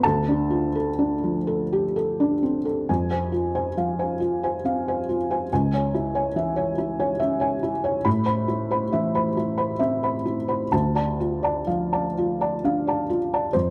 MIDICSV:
0, 0, Header, 1, 2, 480
1, 0, Start_track
1, 0, Tempo, 950872
1, 17, Time_signature, 3, 2, 24, 8
1, 1457, Tempo, 863309
1, 5297, Tempo, 943396
1, 6737, Tempo, 907716
1, 7308, End_track
2, 0, Start_track
2, 0, Title_t, "Felt piano"
2, 0, Program_c, 0, 0
2, 0, Control_c, 0, 64, 127
2, 17, Note_on_c, 0, 81, 86
2, 21, Note_on_c, 0, 69, 65
2, 26, Control_c, 0, 64, 0
2, 26, Note_on_c, 0, 38, 63
2, 107, Control_c, 0, 64, 127
2, 143, Note_on_c, 0, 62, 49
2, 254, Note_on_c, 0, 65, 47
2, 336, Note_off_c, 0, 62, 0
2, 373, Note_off_c, 0, 69, 0
2, 380, Note_on_c, 0, 69, 53
2, 452, Note_off_c, 0, 65, 0
2, 498, Note_on_c, 0, 62, 50
2, 574, Note_off_c, 0, 69, 0
2, 624, Note_on_c, 0, 53, 44
2, 693, Note_off_c, 0, 62, 0
2, 743, Note_on_c, 0, 69, 55
2, 816, Note_off_c, 0, 53, 0
2, 871, Note_on_c, 0, 67, 50
2, 935, Note_off_c, 0, 69, 0
2, 987, Note_off_c, 0, 67, 0
2, 990, Note_on_c, 0, 69, 56
2, 1111, Note_on_c, 0, 62, 54
2, 1179, Note_off_c, 0, 69, 0
2, 1224, Note_off_c, 0, 81, 0
2, 1226, Note_on_c, 0, 60, 45
2, 1299, Note_off_c, 0, 62, 0
2, 1339, Note_on_c, 0, 69, 50
2, 1343, Note_off_c, 0, 60, 0
2, 1440, Note_off_c, 0, 38, 0
2, 1455, Note_off_c, 0, 69, 0
2, 1460, Note_on_c, 0, 41, 49
2, 1460, Note_on_c, 0, 80, 48
2, 1465, Control_c, 0, 64, 0
2, 1562, Control_c, 0, 64, 127
2, 1571, Note_off_c, 0, 80, 0
2, 1580, Note_on_c, 0, 80, 37
2, 1582, Note_on_c, 0, 72, 33
2, 1690, Note_off_c, 0, 80, 0
2, 1691, Note_off_c, 0, 72, 0
2, 1699, Note_on_c, 0, 65, 39
2, 1826, Note_on_c, 0, 72, 38
2, 1827, Note_on_c, 0, 80, 41
2, 1896, Note_off_c, 0, 65, 0
2, 1935, Note_off_c, 0, 72, 0
2, 1935, Note_off_c, 0, 80, 0
2, 1949, Note_on_c, 0, 53, 40
2, 1951, Note_on_c, 0, 77, 42
2, 2071, Note_on_c, 0, 72, 34
2, 2073, Note_on_c, 0, 80, 36
2, 2143, Note_off_c, 0, 77, 0
2, 2179, Note_off_c, 0, 72, 0
2, 2180, Note_off_c, 0, 80, 0
2, 2189, Note_on_c, 0, 65, 41
2, 2317, Note_on_c, 0, 72, 37
2, 2320, Note_on_c, 0, 80, 44
2, 2382, Note_off_c, 0, 65, 0
2, 2422, Note_off_c, 0, 72, 0
2, 2424, Note_off_c, 0, 80, 0
2, 2435, Note_on_c, 0, 60, 35
2, 2439, Note_on_c, 0, 77, 47
2, 2566, Note_on_c, 0, 80, 42
2, 2567, Note_on_c, 0, 72, 37
2, 2626, Note_off_c, 0, 77, 0
2, 2667, Note_off_c, 0, 72, 0
2, 2667, Note_off_c, 0, 80, 0
2, 2682, Note_on_c, 0, 65, 42
2, 2719, Note_off_c, 0, 53, 0
2, 2802, Note_on_c, 0, 72, 40
2, 2806, Note_on_c, 0, 80, 41
2, 2868, Note_off_c, 0, 65, 0
2, 2890, Note_off_c, 0, 41, 0
2, 2891, Note_off_c, 0, 60, 0
2, 2905, Note_off_c, 0, 72, 0
2, 2907, Note_off_c, 0, 80, 0
2, 2921, Control_c, 0, 64, 0
2, 2924, Note_on_c, 0, 37, 55
2, 2926, Note_on_c, 0, 80, 50
2, 3019, Control_c, 0, 64, 127
2, 3035, Note_off_c, 0, 80, 0
2, 3042, Note_on_c, 0, 73, 41
2, 3043, Note_on_c, 0, 80, 40
2, 3145, Note_off_c, 0, 73, 0
2, 3145, Note_off_c, 0, 80, 0
2, 3157, Note_on_c, 0, 64, 40
2, 3271, Note_on_c, 0, 73, 41
2, 3274, Note_on_c, 0, 80, 45
2, 3343, Note_off_c, 0, 64, 0
2, 3376, Note_off_c, 0, 73, 0
2, 3377, Note_off_c, 0, 80, 0
2, 3388, Note_on_c, 0, 52, 40
2, 3390, Note_on_c, 0, 76, 49
2, 3500, Note_on_c, 0, 73, 43
2, 3506, Note_on_c, 0, 80, 44
2, 3576, Note_off_c, 0, 76, 0
2, 3607, Note_off_c, 0, 73, 0
2, 3611, Note_off_c, 0, 80, 0
2, 3622, Note_on_c, 0, 64, 45
2, 3742, Note_on_c, 0, 73, 44
2, 3742, Note_on_c, 0, 80, 47
2, 3810, Note_off_c, 0, 64, 0
2, 3847, Note_off_c, 0, 73, 0
2, 3847, Note_off_c, 0, 80, 0
2, 3853, Note_on_c, 0, 61, 45
2, 3853, Note_on_c, 0, 76, 56
2, 3966, Note_on_c, 0, 73, 41
2, 3973, Note_on_c, 0, 80, 47
2, 4045, Note_off_c, 0, 76, 0
2, 4077, Note_off_c, 0, 73, 0
2, 4081, Note_off_c, 0, 80, 0
2, 4094, Note_on_c, 0, 64, 46
2, 4142, Note_off_c, 0, 52, 0
2, 4211, Note_on_c, 0, 73, 48
2, 4216, Note_on_c, 0, 80, 48
2, 4285, Note_off_c, 0, 64, 0
2, 4309, Note_off_c, 0, 61, 0
2, 4318, Note_off_c, 0, 37, 0
2, 4320, Note_off_c, 0, 73, 0
2, 4323, Note_off_c, 0, 80, 0
2, 4326, Note_on_c, 0, 83, 63
2, 4329, Note_on_c, 0, 45, 69
2, 4344, Control_c, 0, 64, 0
2, 4422, Control_c, 0, 64, 127
2, 4438, Note_off_c, 0, 83, 0
2, 4443, Note_on_c, 0, 72, 44
2, 4446, Note_on_c, 0, 83, 49
2, 4556, Note_off_c, 0, 72, 0
2, 4557, Note_off_c, 0, 83, 0
2, 4567, Note_on_c, 0, 64, 47
2, 4693, Note_on_c, 0, 72, 45
2, 4698, Note_on_c, 0, 83, 50
2, 4762, Note_off_c, 0, 64, 0
2, 4801, Note_off_c, 0, 72, 0
2, 4804, Note_off_c, 0, 83, 0
2, 4814, Note_on_c, 0, 76, 55
2, 4819, Note_on_c, 0, 52, 46
2, 4938, Note_on_c, 0, 72, 45
2, 4942, Note_on_c, 0, 83, 46
2, 5006, Note_off_c, 0, 76, 0
2, 5044, Note_off_c, 0, 72, 0
2, 5046, Note_off_c, 0, 83, 0
2, 5063, Note_on_c, 0, 64, 47
2, 5176, Note_on_c, 0, 83, 50
2, 5179, Note_on_c, 0, 72, 47
2, 5254, Note_off_c, 0, 64, 0
2, 5287, Note_off_c, 0, 83, 0
2, 5288, Note_off_c, 0, 72, 0
2, 5298, Note_on_c, 0, 76, 58
2, 5300, Note_on_c, 0, 60, 45
2, 5418, Note_on_c, 0, 72, 40
2, 5421, Note_on_c, 0, 83, 45
2, 5483, Note_off_c, 0, 76, 0
2, 5521, Note_off_c, 0, 72, 0
2, 5523, Note_off_c, 0, 83, 0
2, 5532, Note_on_c, 0, 64, 42
2, 5581, Note_off_c, 0, 52, 0
2, 5648, Note_on_c, 0, 72, 43
2, 5651, Note_on_c, 0, 83, 43
2, 5722, Note_off_c, 0, 64, 0
2, 5747, Note_off_c, 0, 45, 0
2, 5750, Note_off_c, 0, 60, 0
2, 5757, Note_off_c, 0, 72, 0
2, 5758, Note_off_c, 0, 83, 0
2, 5768, Note_on_c, 0, 81, 54
2, 5769, Note_on_c, 0, 38, 56
2, 5780, Control_c, 0, 64, 0
2, 5878, Control_c, 0, 64, 127
2, 5883, Note_off_c, 0, 81, 0
2, 5887, Note_on_c, 0, 74, 37
2, 5891, Note_on_c, 0, 81, 43
2, 5999, Note_off_c, 0, 74, 0
2, 6001, Note_off_c, 0, 81, 0
2, 6014, Note_on_c, 0, 65, 43
2, 6129, Note_on_c, 0, 74, 45
2, 6136, Note_on_c, 0, 81, 47
2, 6210, Note_off_c, 0, 65, 0
2, 6243, Note_off_c, 0, 74, 0
2, 6247, Note_off_c, 0, 81, 0
2, 6252, Note_on_c, 0, 77, 44
2, 6254, Note_on_c, 0, 53, 41
2, 6383, Note_on_c, 0, 81, 43
2, 6385, Note_on_c, 0, 74, 40
2, 6450, Note_off_c, 0, 77, 0
2, 6490, Note_off_c, 0, 81, 0
2, 6491, Note_off_c, 0, 74, 0
2, 6512, Note_on_c, 0, 65, 45
2, 6628, Note_on_c, 0, 74, 44
2, 6631, Note_on_c, 0, 81, 45
2, 6696, Note_off_c, 0, 65, 0
2, 6731, Note_off_c, 0, 74, 0
2, 6732, Note_off_c, 0, 81, 0
2, 6746, Note_on_c, 0, 62, 38
2, 6750, Note_on_c, 0, 77, 46
2, 6869, Note_on_c, 0, 74, 40
2, 6875, Note_on_c, 0, 81, 44
2, 6940, Note_off_c, 0, 77, 0
2, 6975, Note_off_c, 0, 74, 0
2, 6978, Note_off_c, 0, 81, 0
2, 6988, Note_on_c, 0, 65, 45
2, 7028, Note_off_c, 0, 53, 0
2, 7114, Note_on_c, 0, 74, 39
2, 7115, Note_on_c, 0, 81, 43
2, 7177, Note_off_c, 0, 65, 0
2, 7199, Note_off_c, 0, 38, 0
2, 7204, Note_off_c, 0, 62, 0
2, 7215, Note_off_c, 0, 74, 0
2, 7215, Note_off_c, 0, 81, 0
2, 7218, Note_on_c, 0, 72, 74
2, 7226, Note_on_c, 0, 41, 53
2, 7230, Control_c, 0, 64, 0
2, 7303, Control_c, 0, 64, 127
2, 7308, Note_off_c, 0, 41, 0
2, 7308, Note_off_c, 0, 72, 0
2, 7308, End_track
0, 0, End_of_file